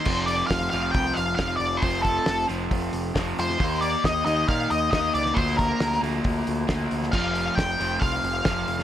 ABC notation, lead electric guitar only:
X:1
M:4/4
L:1/8
Q:1/4=136
K:Eblyd
V:1 name="Lead electric guitar"
c d f f g f f d | c A2 z4 c- | c d e e f e e d | c B2 z4 z |
f2 g2 f4 |]